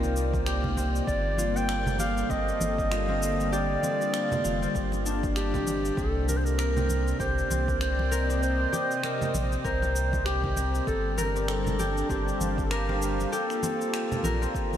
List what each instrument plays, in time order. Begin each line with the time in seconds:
Already playing: sub bass C2, analog synth pad C3 A#3 C4 D#4 D5, harp F4 G4, clarinet A#4
0.03 harp C4, muted conga, shaker
0.16 shaker
0.34 kick, muted conga, shaker
0.46 harp G4, finger snap, shaker
0.64 kick, muted conga, low conga
0.77 harp C4, muted conga, high conga, shaker
0.96 shaker
1.07 sub bass G1, analog synth pad G3, clarinet D5, kick, shaker
1.37 harp F4, high conga, shaker
1.56 analog synth pad D3 A4, harp C4, clarinet G5, shaker
1.69 finger snap, shaker
1.86 low conga, shaker
1.96 harp G4, analog synth pad F5, clarinet F5, high conga, shaker
2.18 shaker
2.30 sub bass G1, harp C4, clarinet D#5, kick, shaker
2.48 shaker
2.61 sub bass G1, high conga, shaker
2.78 kick, shaker
2.91 harp F4, finger snap, shaker
3.09 harp C4, muted conga
3.23 shaker
3.40 muted conga, shaker
3.52 harp G4, clarinet D5, shaker
3.83 harp C4, high conga, shaker
4.02 shaker
4.14 finger snap, shaker
4.31 muted conga, low conga, shaker
4.44 sub bass F1, harp F4, high conga, shaker
4.62 harp C4, shaker
4.75 sub bass G1, kick, shaker
4.92 muted conga, shaker
5.05 harp D4, shaker
5.23 kick, muted conga, shaker
5.36 harp D4, clarinet G4, finger snap, shaker
5.54 harp C4, kick, muted conga, low conga, shaker
5.66 muted conga, high conga, shaker
5.85 shaker
5.97 sub bass C2, analog synth pad C3, harp C4, clarinet A4, kick, shaker
6.28 clarinet A#4, high conga, shaker
6.36 clarinet C5
6.41 analog synth pad C4, clarinet A#4
6.46 shaker
6.58 harp A#4, analog synth pad D5, finger snap, shaker
6.76 harp C4, low conga, shaker
6.89 high conga, shaker
7.08 shaker
7.20 sub bass C2, harp G4, clarinet C5, kick, shaker
7.38 shaker
7.50 sub bass C2, harp C4, high conga, shaker
7.68 kick, shaker
7.81 clarinet C5, finger snap, shaker
7.98 analog synth pad D#5, muted conga
8.11 harp A#4, shaker
8.29 harp C4, muted conga, shaker
8.43 clarinet C5, shaker
8.72 harp G4, high conga, shaker
8.91 shaker
9.03 harp C4, clarinet A#4, finger snap, shaker
9.21 muted conga, low conga, shaker
9.34 sub bass A#1, high conga, shaker
9.52 shaker
9.64 sub bass C2, harp A#4, clarinet C5, kick, shaker
9.82 harp C4, muted conga, shaker
9.96 shaker
10.13 kick, muted conga, shaker
10.25 clarinet G4, harp G4, finger snap, shaker
10.44 kick, muted conga, low conga
10.56 harp C4, muted conga, high conga, shaker
10.75 shaker
10.87 sub bass G1, analog synth pad G3, clarinet A4, kick, shaker
11.03 analog synth pad D4 A5
11.17 clarinet A#4, harp A#4, high conga, shaker
11.36 harp C4, shaker
11.48 clarinet A4, finger snap, shaker
11.66 low conga, shaker
11.79 harp G4, high conga, shaker
11.98 analog synth pad F5, shaker
12.10 sub bass G1, harp C4, clarinet G4, kick, shaker
12.28 shaker
12.40 sub bass G1, high conga, shaker
12.58 kick, shaker
12.65 clarinet A4
12.71 clarinet G4, harp A#4, finger snap, shaker
12.89 harp C4, muted conga
13.02 shaker
13.19 muted conga, shaker
13.32 analog synth pad A#3, harp G4, clarinet A4, shaker
13.41 analog synth pad F4
13.50 finger snap, shaker
13.63 harp C4, high conga, shaker
13.81 shaker
13.94 finger snap, shaker
14.06 analog synth pad D5
14.12 muted conga, low conga, shaker
14.23 sub bass A#1, harp A#4, high conga, shaker
14.42 harp C4, analog synth pad C5, shaker
14.55 kick, shaker
14.73 muted conga, shaker